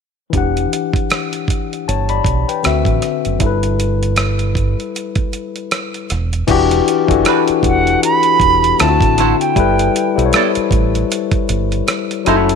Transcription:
0.30 fingered electric bass E1, tine electric piano E3 D4, kick, closed hi-hat
0.35 tine electric piano G4 F#5
0.57 closed hi-hat
0.73 closed hi-hat
0.93 kick, closed hi-hat
1.10 cross-stick, closed hi-hat
1.33 closed hi-hat
1.48 kick, closed hi-hat
1.73 closed hi-hat
1.88 fingered electric bass G1, tine electric piano C#5 A5, closed hi-hat
2.09 tine electric piano D5 B5, closed hi-hat
2.25 fingered electric bass B1, kick, closed hi-hat
2.48 tine electric piano B4 G5, closed hi-hat
2.63 fingered electric bass D2, tine electric piano D3 C4 F#4 E5, cross-stick, closed hi-hat
2.85 fingered electric bass A1, kick, closed hi-hat
3.02 cross-stick, closed hi-hat
3.25 fingered electric bass F#1, closed hi-hat
3.39 fingered electric bass G1, tine electric piano G3 E4, kick, closed hi-hat
3.44 tine electric piano A4 B4
3.63 closed hi-hat
3.80 closed hi-hat
4.03 closed hi-hat
4.16 cross-stick, closed hi-hat
4.39 closed hi-hat
4.55 kick, closed hi-hat
4.80 closed hi-hat
4.96 closed hi-hat
5.15 kick, closed hi-hat
5.33 closed hi-hat
5.56 closed hi-hat
5.71 cross-stick, closed hi-hat
5.94 closed hi-hat
6.10 fingered electric bass E1, cross-stick, closed hi-hat
6.33 closed hi-hat
6.47 fingered electric bass E1, tine electric piano E3 D4 F#4 G4, kick, closed hi-hat, crash
6.71 closed hi-hat
6.88 closed hi-hat
7.07 fingered electric bass F#1, tine electric piano E3 D4 F#4 A4, kick, closed hi-hat
7.25 hollow-body jazz guitar G3 D4 F#4 B4, cross-stick, closed hi-hat
7.48 muted fingered electric bass stroke, closed hi-hat
7.63 fingered electric bass E1, kick, closed hi-hat
7.67 flute F#5
7.87 closed hi-hat
8.03 flute B5, closed hi-hat
8.23 closed hi-hat
8.40 fingered electric bass E1, kick, closed hi-hat
8.64 closed hi-hat
8.79 fingered electric bass D2, tine electric piano D3 C4 E4 F4, flute A5, muted hollow-body jazz guitar stroke, cross-stick, closed hi-hat
8.89 tine electric piano F#4
9.01 fingered electric bass A1, kick, closed hi-hat
9.18 hollow-body jazz guitar A3 E4 F#4 C5, cross-stick, closed hi-hat
9.40 flute G5, closed hi-hat
9.56 fingered electric bass G1, tine electric piano G3 E4 A4 B4, kick, closed hi-hat
9.79 closed hi-hat
9.96 closed hi-hat
10.15 fingered electric bass B1, tine electric piano G3 E4 A4 C5, closed hi-hat
10.26 tine electric piano C#5
10.33 hollow-body jazz guitar B3 E4 A4 D5, cross-stick, closed hi-hat
10.55 muted fingered electric bass stroke, closed hi-hat
10.71 fingered electric bass A1, kick, closed hi-hat
10.95 closed hi-hat
11.12 closed hi-hat
11.31 kick, closed hi-hat
11.49 fingered electric bass G1, closed hi-hat
11.72 closed hi-hat
11.88 muted hollow-body jazz guitar stroke, cross-stick, closed hi-hat
12.11 closed hi-hat
12.25 fingered electric bass F#1, tine electric piano F#3 C#4 E4 A4, hollow-body jazz guitar A3 E4 F#4 C#5, cross-stick, closed hi-hat
12.49 closed hi-hat

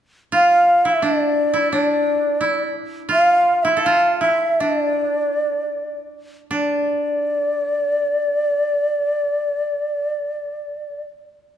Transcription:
0.32 koto F4, shakuhachi F5
0.85 koto E4
0.90 shakuhachi E5
1.02 koto D4, shakuhachi D5
1.54 koto E4
1.72 koto D4, shakuhachi D5
2.41 koto E4
3.09 koto F4, shakuhachi F5
3.63 koto E4, shakuhachi E5
3.77 koto A4
3.82 koto F4, shakuhachi F5
4.20 koto E4, shakuhachi E5
4.60 koto D4, shakuhachi D#5
4.81 shakuhachi D5
6.51 koto D4, shakuhachi D5

